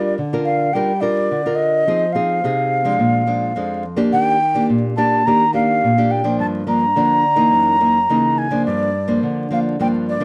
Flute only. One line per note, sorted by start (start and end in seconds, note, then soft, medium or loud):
0.00 0.14 D5 medium
0.44 0.75 F5 medium
0.73 1.02 G5 medium
1.01 1.57 D5 medium
1.55 2.14 D#5 medium
2.12 3.84 F5 medium
4.12 4.66 G5 loud
4.97 5.28 A5 medium
5.26 5.54 A#5 medium
5.54 6.12 F5 medium
6.11 6.39 G5 medium
6.40 6.46 A5 medium
6.68 8.40 A#5 medium
8.38 8.65 G#5 medium
8.66 9.19 D5 medium
9.53 9.59 F5 medium
9.81 9.87 G5 medium
10.09 10.24 D5 medium